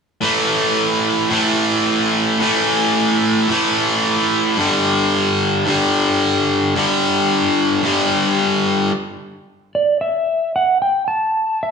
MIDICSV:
0, 0, Header, 1, 3, 480
1, 0, Start_track
1, 0, Tempo, 544465
1, 191, Time_signature, 4, 2, 24, 8
1, 10324, End_track
2, 0, Start_track
2, 0, Title_t, "Electric slide guitar"
2, 0, Program_c, 0, 29
2, 8596, Note_on_c, 0, 74, 45
2, 8816, Note_off_c, 0, 74, 0
2, 8826, Note_on_c, 0, 76, 51
2, 9304, Note_off_c, 0, 76, 0
2, 9307, Note_on_c, 0, 78, 52
2, 9534, Note_off_c, 0, 78, 0
2, 9537, Note_on_c, 0, 79, 54
2, 9762, Note_off_c, 0, 79, 0
2, 9766, Note_on_c, 0, 81, 61
2, 10252, Note_on_c, 0, 76, 58
2, 10271, Note_off_c, 0, 81, 0
2, 10324, Note_off_c, 0, 76, 0
2, 10324, End_track
3, 0, Start_track
3, 0, Title_t, "Distorted electric guitar"
3, 0, Program_c, 1, 30
3, 183, Note_on_c, 1, 45, 41
3, 198, Note_on_c, 1, 52, 42
3, 214, Note_on_c, 1, 57, 44
3, 1141, Note_off_c, 1, 45, 0
3, 1145, Note_on_c, 1, 45, 35
3, 1160, Note_off_c, 1, 52, 0
3, 1163, Note_on_c, 1, 52, 38
3, 1172, Note_off_c, 1, 57, 0
3, 1176, Note_on_c, 1, 57, 39
3, 2097, Note_off_c, 1, 45, 0
3, 2106, Note_off_c, 1, 52, 0
3, 2109, Note_on_c, 1, 45, 39
3, 2113, Note_off_c, 1, 57, 0
3, 2126, Note_on_c, 1, 52, 44
3, 2142, Note_on_c, 1, 57, 47
3, 3059, Note_off_c, 1, 45, 0
3, 3068, Note_off_c, 1, 52, 0
3, 3072, Note_on_c, 1, 45, 36
3, 3076, Note_off_c, 1, 57, 0
3, 3091, Note_on_c, 1, 52, 39
3, 3102, Note_on_c, 1, 57, 37
3, 4021, Note_off_c, 1, 45, 0
3, 4029, Note_on_c, 1, 43, 40
3, 4030, Note_off_c, 1, 52, 0
3, 4036, Note_off_c, 1, 57, 0
3, 4047, Note_on_c, 1, 50, 46
3, 4060, Note_on_c, 1, 55, 47
3, 4985, Note_off_c, 1, 43, 0
3, 4988, Note_off_c, 1, 50, 0
3, 4988, Note_on_c, 1, 43, 42
3, 5005, Note_on_c, 1, 50, 40
3, 5018, Note_off_c, 1, 55, 0
3, 5022, Note_on_c, 1, 55, 42
3, 5937, Note_off_c, 1, 43, 0
3, 5946, Note_off_c, 1, 50, 0
3, 5953, Note_on_c, 1, 43, 47
3, 5970, Note_on_c, 1, 50, 47
3, 5978, Note_off_c, 1, 55, 0
3, 5982, Note_on_c, 1, 55, 50
3, 6890, Note_off_c, 1, 43, 0
3, 6900, Note_on_c, 1, 43, 42
3, 6907, Note_off_c, 1, 50, 0
3, 6913, Note_off_c, 1, 55, 0
3, 6918, Note_on_c, 1, 50, 42
3, 6932, Note_on_c, 1, 55, 43
3, 7851, Note_off_c, 1, 43, 0
3, 7860, Note_off_c, 1, 50, 0
3, 7867, Note_off_c, 1, 55, 0
3, 10324, End_track
0, 0, End_of_file